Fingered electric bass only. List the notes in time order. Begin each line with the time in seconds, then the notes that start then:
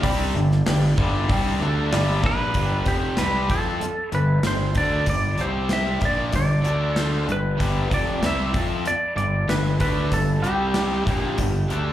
0.04 C2
0.35 G1
0.66 G1
0.98 G1
1.30 C2
1.60 D2
1.93 G1
2.23 A#1
2.55 G1
2.86 F1
3.19 C2
3.50 F2
3.80 muted fingered electric bass stroke
4.12 G1
4.43 G1
4.75 D2
5.07 G1
5.38 C2
6.02 A#1
6.34 G1
6.65 D2
7.28 G1
7.61 G1
7.92 F1
8.22 C2
8.54 F2
8.86 muted fingered electric bass stroke
9.16 G1
9.48 G1
9.81 D2
10.12 G1
10.43 C2
11.07 A#1
11.39 G1
11.70 D2